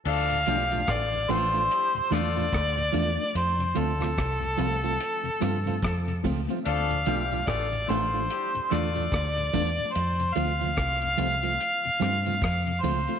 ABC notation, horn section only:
X:1
M:4/4
L:1/16
Q:"Swing 16ths" 1/4=73
K:Dm
V:1 name="Horn section"
[F,DA]2 [E,G,G]2 [D,A,F] z [D,A,F]2 [G,EG] z [D,A,F]2 z4 | z16 | [F,DA]2 [E,G,G]2 [D,A,F] z [D,A,F]2 [G,EG] z [D,A,F]2 z4 | z16 |]